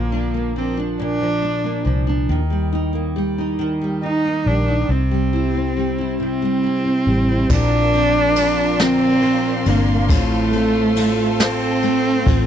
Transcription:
Already playing: A#1 A#2 D3 F3 A#3
0.12 D4
0.34 A#3
0.56 F3 C4
0.77 D4
1.00 A#2 D4
1.21 F3
1.42 D4
1.64 A#3
1.85 C2 F3
2.07 D4
2.29 D#2 D#3
2.50 G3
2.73 D#4
2.93 A#3
3.16 G3
3.38 D#4
3.59 D#3
3.82 G3
4.03 D#4
4.25 A#3
4.46 A#1 G3 D4
4.68 D#4
4.89 C2 C3 C4
5.11 G3
5.33 E4
5.55 C4
5.77 G3
5.98 E4
6.20 C3 C4
6.42 G3
6.64 E4
6.85 C4
7.07 A1 G3
7.29 E4
7.49 A#1 A#2 D3 F3 C4 D4 A#4 D5 F5 C6, kick, crash
7.92 F3 C4 D4 A#4, ride
8.36 F3 C4 D4 A#4, ride
8.79 A#2 D3 F3 C4 D4 A#4, snare, ride
9.22 F3 C4 D4, ride
9.26 A#4
9.66 G1 F3 A#3 C4 D4 A#4, ride
10.09 A1 A2 A3 C4 F4 A4 C5, kick, ride
10.52 A3 C4 F4 A4, ride
10.95 A3 C4 F4 A4, ride
11.39 A3 C4 F4 A4, snare, ride
11.82 A3 C4 F4 A4, ride
12.26 A1 C4 F4 A4, kick, ride

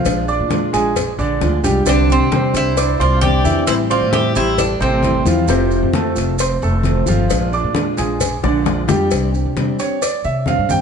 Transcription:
Already playing: F3 F4 F5
0.04 A#1 F3 G#3 D4 F4, cowbell, high conga, maracas
0.28 D4 D5 D6, high conga, maracas
0.40 A#2
0.49 F3 G#3 D4 F4, cowbell, high conga, maracas
0.73 A#1 G#3 D4 F4 G#4 G#5, cowbell, high conga, maracas
0.95 muted steel-string acoustic guitar stroke, cowbell, high conga, low conga, maracas
1.18 A#1 D3 D4 D5, high conga, maracas
1.41 D2 F3 G#3 D4 F4, cowbell, high conga, maracas
1.63 C2 G3 G#3 D4 F4 G4 G5, cowbell, low conga, maracas
1.86 C2 C3 D3 G3 C4 D4 G4 D5, cowbell, high conga, maracas
2.08 C4 G4, high conga, maracas
2.20 C3
2.31 C3 G3 C4 D4 G4 C5 C6, cowbell, high conga, maracas
2.54 C2 C4 D4 E4 G4 C5, cowbell, high conga, maracas
2.77 D4 D5 D6, muted steel-string acoustic guitar stroke, cowbell, high conga, maracas
2.98 C2 C4 F4 C5 D5 C6, high conga, maracas
3.21 C3 G3 C4 D4 G4 D5, cowbell, high conga, maracas
3.44 E2 E3 C4 D4 E4 G4 E5, high conga, maracas
3.67 A1 E3 G3 C4 E4 C5, cowbell, high conga, maracas
3.90 C4 F4 C5 D5 C6, high conga, maracas
4.01 A2
4.11 E3 G3 C4 G4 E5, cowbell, high conga, maracas
4.15 E4
4.35 A1 G3 C4 E4 G4 C5 G5, cowbell, high conga, maracas
4.56 D4 A4, muted steel-string acoustic guitar stroke, cowbell, high conga, low conga, maracas
4.80 A1 C3 C4 A4 C5, high conga, maracas
5.02 E3 G3 C4 E4, cowbell, high conga, maracas
5.25 E2 F3 G3 C4 E4 F4 F5, cowbell, high conga, maracas
5.46 F1 C3 F3 A3 C4 F4 C5, cowbell, high conga, maracas
5.71 high conga, maracas
5.82 F2
5.93 C3 F3 A3 C4 F4 A4 A5, cowbell, high conga, maracas
6.15 F1 A3 C4 F4, cowbell, high conga, maracas
6.38 C4 C5 C6, muted steel-string acoustic guitar stroke, cowbell, high conga, maracas
6.62 F1 A3 A4 A5, high conga, maracas
6.83 C3 F3 A3 C4 F4, cowbell, high conga, maracas
7.05 G1 F3 A3 C4 F4 F5, high conga, maracas
7.28 A#1 F3 G#3 D4 F4, cowbell, maracas
7.52 D4 D5 D6, high conga, maracas
7.64 A#2
7.74 F3 G#3 D4 F4, cowbell, high conga, maracas
7.97 A#1 G#3 D4 F4 G#4 G#5, cowbell, high conga, maracas
8.20 muted steel-string acoustic guitar stroke, cowbell, high conga, low conga, maracas
8.43 A#1 D3 D4 D5, high bongo, high conga, maracas
8.64 F3 G#3 D4 F4, cowbell, high bongo, high conga, maracas
8.87 F2 G3 G#3 D4 F4 G4 G5, cowbell, low bongo, high conga, maracas
9.10 C2 C3 G3 C4 D4 G4, cowbell, high conga, maracas
9.32 C4 D4 G4, high conga, maracas
9.46 C3
9.56 C3 G3 C4 D4 G4, cowbell, high conga, maracas
9.78 C4 D4 G4 C#5, cowbell, high conga, maracas
10.01 D5, muted steel-string acoustic guitar stroke, cowbell, high conga, maracas
10.24 C3 E5, high conga, maracas
10.46 C3 G3 C4 D4 G4 F5, cowbell, high conga, maracas
10.58 G2
10.69 G2 C4 D4 G4 G5, high conga, maracas

